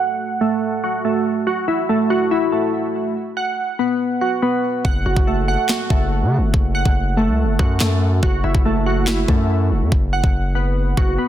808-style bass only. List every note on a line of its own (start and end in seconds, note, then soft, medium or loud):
4.85 5.05 F#1 loud
5.06 5.16 F#1 loud
5.17 5.57 F#1 loud
5.90 6.24 F#1 loud
6.22 6.39 C#3 loud
6.38 6.53 F#1 loud
6.54 6.84 F#1 loud
6.85 7.29 F#1 loud
7.28 7.45 C#2 loud
7.44 7.59 F#1 medium
7.59 7.80 F#2 loud
7.80 8.21 F#2 loud
8.23 8.43 F#1 loud
8.44 8.54 F#1 loud
8.55 9.26 F#1 loud
9.28 9.72 F#2 loud
9.71 9.83 E1 loud
9.81 9.91 F#2 medium
9.92 10.22 F#1 loud
10.24 10.95 F#1 loud
10.97 11.18 F#1 loud